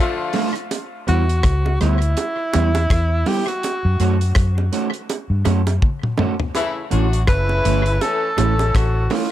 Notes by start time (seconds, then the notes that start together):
0.00 D3 F3 A3 F4
0.33 A3 D4 F4, open hi-hat, low bongo
0.55 muted clean electric guitar stroke, closed hi-hat
0.71 closed hi-hat, high bongo
1.07 E2 G3 B3 E4 F#4, closed hi-hat
1.29 closed hi-hat
1.43 C#2, kick, cross-stick, closed hi-hat
1.65 muted clean electric guitar stroke, high bongo
1.80 D2 G3 B3 E4, cross-stick, closed hi-hat
2.02 closed hi-hat
2.17 closed hi-hat, high bongo
2.53 E2 G3 B3 E4, closed hi-hat, high bongo
2.75 closed hi-hat, high bongo
2.90 E2, kick, cross-stick, closed hi-hat
3.26 G3 B3 E4 G4, open hi-hat, low bongo
3.48 F#4, muted clean electric guitar stroke, closed hi-hat
3.63 closed hi-hat, high bongo
3.85 F#2
4.00 F#2 A3 C#4 F#4, closed hi-hat
4.21 closed hi-hat
4.35 F#2, kick, cross-stick, closed hi-hat
4.57 muted clean electric guitar stroke, high bongo
4.72 A3 C#4 F#4, closed hi-hat
4.94 closed hi-hat
5.09 closed hi-hat, high bongo
5.30 G2
5.45 F#2 A3 C#4 F#4, closed hi-hat, high bongo
5.67 closed hi-hat, high bongo
5.82 kick, high tom
6.03 mid tom
6.18 A3 C#4 F#4, mid tom, low bongo
6.40 floor tom
6.54 C#3 E3 A3 E4, closed hi-hat, high bongo
6.90 A1 F#3 A3 C#4 D4 E4 F#4, closed hi-hat
7.13 closed hi-hat
7.27 C#3 E3 A3 E4 B4, kick, cross-stick, closed hi-hat
7.49 muted clean electric guitar stroke, high bongo
7.65 G1 A3 C#4 E4, closed hi-hat
7.86 closed hi-hat
8.01 E3 A3 C#4 A4, closed hi-hat, high bongo
8.37 A1 E3 A3 C#4 E4 A4, closed hi-hat, high bongo
8.59 closed hi-hat, high bongo
8.75 A1 F#4, kick, cross-stick, closed hi-hat
9.10 A3 C#4 E4 F4, open hi-hat, low bongo